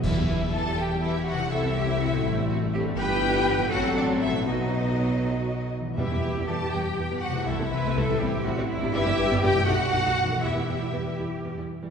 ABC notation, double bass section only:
X:1
M:6/8
L:1/16
Q:3/8=81
K:Em
V:1 name="Double bass section" clef=bass
E,,12 | C,,6 A,,,6 | G,,,6 A,,,6 | B,,,8- B,,,2 z2 |
E,, E,, E,, E,, E,, E,, E,, z E,, E,, z E,, | C,, C,, C,, C,, C,, C,, A,,, z A,,, A,,, z A,,, | G,,, G,,, G,,, G,,, G,,, G,,, B,,, z B,,, B,,, z B,,, | E,, E,, E,, E,, E,, E,, E,, z E,, E,, z E,, |]